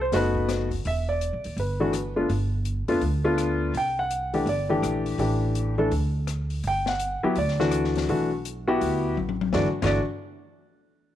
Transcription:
0.01 0.13 C5 medium
0.12 0.81 F#1 medium
0.12 0.67 A3 medium
0.12 0.67 B3 medium
0.12 0.67 D#4 medium
0.12 0.67 F#4 medium
0.12 snare soft
0.12 open hi-hat soft
0.16 0.48 B4 medium
0.35 kick medium
0.49 cross-stick medium
0.49 snare soft
0.49 closed hi-hat medium
0.71 kick medium
0.71 open hi-hat soft
0.85 1.30 E1 medium
0.85 1.08 E5 medium
0.85 open hi-hat soft
1.09 1.54 D5 medium
1.21 closed hi-hat medium
1.33 1.44 B1 medium
1.44 1.56 D#2 medium
1.44 open hi-hat soft
1.57 2.25 G1 medium
1.57 2.13 B4 medium
1.57 open hi-hat soft
1.80 1.92 E3 medium
1.80 1.92 A3 medium
1.80 1.92 D4 medium
1.80 1.92 F#4 medium
1.93 cross-stick medium
1.93 closed hi-hat medium
2.16 2.28 A3 medium
2.16 2.28 B3 soft
2.16 2.28 D4 medium
2.16 2.28 F4 medium
2.29 2.84 G1 medium
2.29 open hi-hat soft
2.65 closed hi-hat soft
2.88 3.01 F1 medium
2.88 3.00 A3 medium
2.88 3.00 B3 medium
2.88 3.01 D4 medium
2.88 3.01 F4 medium
2.88 open hi-hat soft
3.01 3.70 D2 medium
3.01 open hi-hat soft
3.24 3.71 A3 medium
3.24 3.71 B3 medium
3.24 3.72 D4 medium
3.24 3.72 F4 medium
3.38 cross-stick medium
3.38 closed hi-hat medium
3.74 4.43 C2 medium
3.74 3.98 G5 medium
3.74 open hi-hat soft
3.99 4.44 F#5 medium
4.10 closed hi-hat medium
4.33 4.45 E3 medium
4.33 4.45 A3 medium
4.33 4.46 D4 medium
4.33 4.46 G4 medium
4.33 open hi-hat soft
4.46 4.80 G1 medium
4.46 5.03 D5 medium
4.46 open hi-hat soft
4.69 5.16 E3 medium
4.69 5.16 A3 medium
4.69 5.16 D4 medium
4.69 5.17 G4 medium
4.82 5.16 A#1 medium
4.82 cross-stick medium
4.82 closed hi-hat medium
5.06 open hi-hat soft
5.18 5.87 A1 medium
5.18 5.73 E3 medium
5.18 5.73 A3 medium
5.18 5.73 D4 medium
5.18 5.74 G4 medium
5.18 open hi-hat soft
5.55 closed hi-hat medium
5.78 5.90 E3 medium
5.78 5.90 A3 medium
5.78 5.90 D4 medium
5.78 5.90 A4 medium
5.91 6.60 D2 medium
5.91 open hi-hat soft
6.27 cross-stick medium
6.27 closed hi-hat medium
6.50 open hi-hat soft
6.63 7.18 G1 medium
6.63 open hi-hat soft
6.67 6.88 G5 medium
6.86 7.34 F#5 medium
6.86 snare medium
6.99 closed hi-hat medium
7.23 7.35 F#3 medium
7.23 7.35 B3 medium
7.23 7.35 E4 medium
7.23 7.35 G4 medium
7.23 muted upright bass stroke soft
7.36 8.05 D2 medium
7.36 7.92 D5 medium
7.36 open hi-hat soft
7.48 snare soft
7.60 8.06 E3 medium
7.60 8.06 A3 medium
7.60 8.06 D4 medium
7.60 8.06 F#4 medium
7.60 snare soft
7.71 cross-stick medium
7.71 closed hi-hat medium
7.84 snare soft
7.95 snare soft
7.95 open hi-hat soft
8.09 8.77 B1 medium
8.09 8.29 E3 medium
8.09 8.29 A3 medium
8.09 8.29 D4 medium
8.09 8.30 F#4 medium
8.09 open hi-hat soft
8.45 closed hi-hat medium
8.68 9.14 B3 medium
8.68 9.15 E4 medium
8.68 9.14 F#4 medium
8.68 9.15 G4 medium
8.81 9.14 D2 medium
8.81 open hi-hat medium
9.17 9.51 A1 medium
9.17 high tom soft
9.29 high tom medium
9.41 high tom medium
9.53 9.65 G1 medium
9.53 9.67 E3 medium
9.53 9.67 A3 medium
9.53 9.67 D4 medium
9.53 9.67 F#4 medium
9.53 9.66 D5 medium
9.53 kick medium
9.53 snare medium
9.82 9.99 G1 medium
9.82 9.98 E3 medium
9.82 9.99 A3 medium
9.82 9.99 D4 medium
9.82 9.99 F#4 medium
9.82 10.01 D5 medium
9.82 kick medium
9.82 snare medium
9.82 crash medium

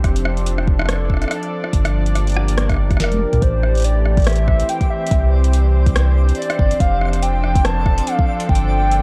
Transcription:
0.00 2.41 C4 medium
0.00 4.10 D4 medium
0.00 0.72 G4 medium
0.00 0.72 C5 medium
0.04 1.25 F1 loud
0.04 3.42 F3 medium
0.04 kick loud
0.04 cross-stick medium
0.04 closed hi-hat medium
0.16 closed hi-hat medium
0.25 cross-stick medium
0.37 closed hi-hat soft
0.46 closed hi-hat medium
0.58 2.41 A4 medium
0.58 cross-stick medium
0.68 kick loud
0.79 4.10 D5 medium
0.79 cross-stick medium
0.82 cross-stick medium
0.86 cross-stick medium
0.89 cross-stick loud
0.89 closed hi-hat medium
0.93 cross-stick soft
0.96 cross-stick soft
1.10 kick medium
1.10 cross-stick soft
1.14 cross-stick soft
1.17 cross-stick soft
1.22 cross-stick soft
1.22 closed hi-hat soft
1.24 cross-stick soft
1.28 cross-stick soft
1.31 cross-stick medium
1.31 closed hi-hat medium
1.43 closed hi-hat soft
1.64 cross-stick medium
1.73 3.01 G1 loud
1.73 kick loud
1.73 closed hi-hat medium
1.85 cross-stick medium
1.85 closed hi-hat medium
1.96 7.48 G4 medium
2.00 3.42 A#3 medium
2.06 closed hi-hat soft
2.15 cross-stick medium
2.15 closed hi-hat medium
2.27 closed hi-hat soft
2.30 closed hi-hat soft
2.32 closed hi-hat soft
2.37 cross-stick medium
2.48 closed hi-hat medium
2.58 cross-stick loud
2.58 closed hi-hat medium
2.69 kick medium
2.69 cross-stick medium
2.69 closed hi-hat soft
2.72 cross-stick soft
2.74 cross-stick soft
2.77 cross-stick soft
2.91 kick loud
2.91 cross-stick soft
2.91 closed hi-hat soft
2.97 3.25 F1 medium
2.97 3.44 A#4 medium
2.97 cross-stick soft
2.97 snare medium
2.97 closed hi-hat medium
3.04 cross-stick medium
3.12 closed hi-hat soft
3.12 high tom soft
3.14 high tom soft
3.16 high tom soft
3.19 high tom medium
3.33 3.39 C2 medium
3.33 closed hi-hat soft
3.33 mid tom medium
3.42 4.63 A1 loud
3.42 6.80 E3 medium
3.42 3.86 C5 loud
3.42 9.02 D5 medium
3.42 kick loud
3.42 closed hi-hat medium
3.63 cross-stick soft
3.72 5.11 A3 medium
3.72 closed hi-hat soft
3.77 closed hi-hat soft
3.80 closed hi-hat soft
3.82 closed hi-hat soft
3.84 4.26 D5 loud
3.84 closed hi-hat medium
4.06 cross-stick soft
4.17 9.02 C4 medium
4.17 9.02 C5 medium
4.17 kick loud
4.17 closed hi-hat soft
4.20 closed hi-hat soft
4.22 closed hi-hat soft
4.24 cross-stick loud
4.24 closed hi-hat soft
4.27 4.71 E5 loud
4.27 closed hi-hat medium
4.30 closed hi-hat soft
4.33 closed hi-hat soft
4.36 closed hi-hat soft
4.48 kick loud
4.48 cross-stick soft
4.60 closed hi-hat medium
4.69 4.90 G5 loud
4.69 closed hi-hat medium
4.81 kick loud
4.81 closed hi-hat soft
4.90 5.29 E5 loud
5.07 closed hi-hat medium
5.11 6.32 C2 loud
5.11 kick loud
5.11 closed hi-hat medium
5.44 closed hi-hat medium
5.53 closed hi-hat medium
5.86 9.02 D4 loud
5.86 kick loud
5.86 closed hi-hat medium
5.96 cross-stick loud
5.96 closed hi-hat medium
6.29 closed hi-hat soft
6.35 6.82 D5 loud
6.35 closed hi-hat soft
6.42 closed hi-hat soft
6.50 cross-stick medium
6.50 closed hi-hat soft
6.59 6.73 G1 loud
6.59 kick loud
6.71 closed hi-hat medium
6.80 8.01 F1 loud
6.80 9.02 F3 medium
6.80 7.24 F5 loud
6.80 kick loud
6.80 closed hi-hat medium
7.01 cross-stick soft
7.05 cross-stick soft
7.08 cross-stick soft
7.13 cross-stick soft
7.13 closed hi-hat medium
7.16 cross-stick soft
7.19 7.66 G5 loud
7.19 cross-stick soft
7.19 closed hi-hat medium
7.44 cross-stick soft
7.55 9.02 A4 medium
7.55 kick loud
7.55 closed hi-hat medium
7.65 8.08 A5 loud
7.65 cross-stick loud
7.65 closed hi-hat medium
7.86 kick loud
7.86 cross-stick soft
7.98 closed hi-hat medium
8.07 8.49 F5 loud
8.07 closed hi-hat medium
8.19 kick loud
8.40 closed hi-hat medium
8.49 9.02 G1 loud
8.49 9.02 G5 loud
8.49 kick loud
8.55 closed hi-hat medium
8.70 9.02 A#3 medium
8.92 closed hi-hat medium

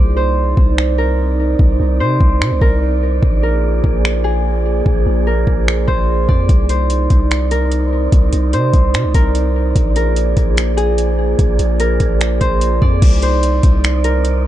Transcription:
0.00 0.55 C2 loud
0.00 3.19 C4 medium
0.00 3.19 D#4 medium
0.00 0.86 A#4 medium
0.00 0.16 C5 medium
0.00 6.45 C5 medium
0.00 1.60 D5 medium
0.00 6.45 D5 medium
0.17 2.00 C5 medium
0.57 1.55 C2 loud
0.57 kick loud
0.78 finger snap loud
0.98 2.61 A#4 medium
1.59 1.79 C2 loud
1.59 kick loud
1.80 2.02 C2 loud
2.00 2.20 C3 medium
2.00 3.98 C5 medium
2.20 2.42 C2 loud
2.20 kick medium
2.41 2.53 C3 loud
2.41 finger snap loud
2.51 2.61 C2 loud
2.61 3.20 C2 loud
2.61 3.43 A#4 medium
2.61 kick medium
3.23 3.81 A#1 loud
3.23 6.46 A#3 medium
3.23 6.46 F4 medium
3.23 6.46 G#4 medium
3.23 kick loud
3.43 5.26 A#4 medium
3.84 4.82 A#1 loud
3.84 kick medium
4.05 finger snap loud
4.24 6.51 G#4 medium
4.86 5.05 A#1 loud
4.86 kick loud
5.06 5.45 A#1 loud
5.27 7.39 A#4 medium
5.47 5.86 A#1 loud
5.47 kick medium
5.68 finger snap loud
5.87 6.27 A#1 loud
5.87 6.69 C5 medium
5.87 kick medium
6.29 6.48 F2 loud
6.29 8.13 D5 medium
6.29 kick loud
6.49 7.08 C2 loud
6.49 9.72 C4 medium
6.49 9.72 D#4 medium
6.49 12.98 C5 medium
6.49 9.72 D5 medium
6.49 12.98 D5 medium
6.49 kick loud
6.49 closed hi-hat medium
6.69 8.53 C5 medium
6.69 closed hi-hat medium
6.90 closed hi-hat medium
7.10 8.08 C2 loud
7.10 kick medium
7.10 closed hi-hat medium
7.31 finger snap loud
7.31 closed hi-hat medium
7.51 9.14 A#4 medium
7.51 closed hi-hat medium
7.72 closed hi-hat medium
8.12 8.32 C2 loud
8.12 kick loud
8.12 closed hi-hat medium
8.33 8.55 C2 loud
8.33 closed hi-hat medium
8.53 8.73 C3 loud
8.53 10.51 C5 medium
8.53 closed hi-hat medium
8.74 8.96 C2 loud
8.74 kick medium
8.74 closed hi-hat medium
8.94 9.06 C3 loud
8.94 finger snap loud
8.94 closed hi-hat medium
9.04 9.14 C2 loud
9.14 9.73 C2 loud
9.14 9.96 A#4 medium
9.14 kick medium
9.14 closed hi-hat medium
9.35 closed hi-hat medium
9.76 10.34 A#1 loud
9.76 12.99 A#3 medium
9.76 12.99 F4 medium
9.76 12.99 G#4 medium
9.76 12.99 D5 medium
9.76 kick loud
9.76 closed hi-hat medium
9.96 11.80 A#4 medium
9.96 closed hi-hat medium
10.16 closed hi-hat medium
10.37 11.35 A#1 loud
10.37 kick loud
10.37 closed hi-hat medium
10.57 finger snap loud
10.57 closed hi-hat medium
10.77 13.04 G#4 medium
10.77 closed hi-hat medium
10.98 closed hi-hat medium
11.39 11.58 A#1 loud
11.39 kick loud
11.39 closed hi-hat medium
11.59 11.98 A#1 loud
11.59 closed hi-hat medium
11.80 13.92 A#4 medium
11.80 closed hi-hat medium
12.00 12.39 A#1 loud
12.00 kick medium
12.00 closed hi-hat medium
12.21 finger snap loud
12.21 closed hi-hat medium
12.41 12.80 A#1 loud
12.41 13.22 C5 medium
12.41 kick medium
12.41 closed hi-hat medium
12.61 closed hi-hat medium
12.82 13.01 F2 loud
12.82 14.47 D5 medium
12.82 kick medium
13.02 13.61 C2 loud
13.02 14.47 C4 medium
13.02 14.47 D#4 medium
13.02 14.47 C5 medium
13.02 14.47 D5 medium
13.02 kick loud
13.02 closed hi-hat medium
13.02 crash loud
13.22 14.47 C5 medium
13.22 closed hi-hat medium
13.43 closed hi-hat medium
13.63 14.47 C2 loud
13.63 kick loud
13.63 closed hi-hat medium
13.84 finger snap loud
13.84 closed hi-hat medium
14.04 14.47 A#4 medium
14.04 closed hi-hat medium
14.25 closed hi-hat medium

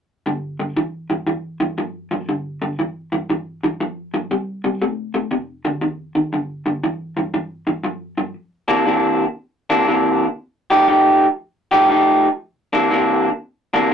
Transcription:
0.26 0.56 G2 medium
0.26 0.56 D3 medium
0.60 0.75 G2 medium
0.60 0.75 D3 medium
0.77 1.06 G2 medium
0.77 1.07 E3 medium
1.10 1.25 G2 medium
1.10 1.26 E3 medium
1.27 1.57 G2 medium
1.27 1.57 E3 medium
1.60 1.76 G2 medium
1.60 1.76 E3 medium
1.78 2.08 G2 medium
1.78 2.08 F3 medium
2.11 2.27 G2 medium
2.11 2.27 F3 medium
2.29 2.58 G2 medium
2.29 2.58 D3 medium
2.62 2.77 G2 medium
2.62 2.77 D3 medium
2.79 3.09 G2 medium
2.79 3.09 E3 medium
3.12 3.28 G2 medium
3.12 3.28 E3 medium
3.30 3.59 G2 medium
3.30 3.60 E3 medium
3.64 3.79 G2 medium
3.64 3.79 E3 medium
3.80 4.10 G2 medium
3.80 4.10 F3 medium
4.14 4.29 G2 medium
4.14 4.29 F3 medium
4.31 4.61 C3 medium
4.31 4.61 G3 medium
4.64 4.80 C3 medium
4.64 4.80 G3 medium
4.82 5.11 C3 medium
4.82 5.12 A3 medium
5.14 5.30 C3 medium
5.14 5.30 A3 medium
5.31 5.61 F2 medium
5.31 5.62 C3 medium
5.65 5.80 F2 medium
5.65 5.81 D3 medium
5.81 6.12 F2 medium
5.81 6.12 D#3 medium
6.15 6.31 F2 medium
6.15 6.31 D#3 medium
6.33 6.63 G2 medium
6.33 6.63 D3 medium
6.66 6.81 G2 medium
6.66 6.82 D3 medium
6.84 7.13 G2 medium
6.84 7.14 E3 medium
7.17 7.32 G2 medium
7.17 7.32 E3 medium
7.34 7.64 G2 medium
7.34 7.64 E3 medium
7.67 7.82 G2 medium
7.67 7.83 E3 medium
7.84 8.14 G2 medium
7.84 8.14 F3 medium
8.18 8.33 G2 medium
8.18 8.33 F3 medium
8.68 8.84 C3 medium
8.68 8.85 E3 medium
8.68 8.85 A#3 medium
8.68 8.85 D4 medium
8.86 9.24 C3 medium
8.86 9.24 E3 medium
8.86 9.24 A#3 medium
8.86 9.24 D4 medium
9.70 9.86 C3 medium
9.70 9.86 E3 medium
9.70 9.87 A#3 medium
9.70 9.87 D4 medium
9.87 10.25 C3 medium
9.87 10.25 E3 medium
9.87 10.26 A#3 medium
9.87 10.26 D4 medium
10.70 10.86 F3 medium
10.70 10.86 A3 medium
10.70 10.87 D#4 medium
10.70 10.87 G4 medium
10.87 11.26 F3 medium
10.87 11.26 A3 medium
10.87 11.26 D#4 medium
10.87 11.26 G4 medium
11.71 11.88 F3 medium
11.71 11.88 A3 medium
11.71 11.89 D#4 medium
11.71 11.88 G4 loud
11.89 12.27 F3 medium
11.89 12.27 A3 medium
11.89 12.27 D#4 medium
11.89 12.27 G4 medium
12.73 12.89 C3 medium
12.73 12.90 E3 medium
12.73 12.90 A#3 medium
12.73 12.90 D4 medium
12.90 13.28 C3 medium
12.90 13.28 E3 medium
12.90 13.29 A#3 medium
12.90 13.29 D4 medium
13.74 13.89 C3 medium
13.74 13.90 E3 medium
13.74 13.90 A#3 medium
13.74 13.90 D4 medium
13.90 13.94 C3 medium

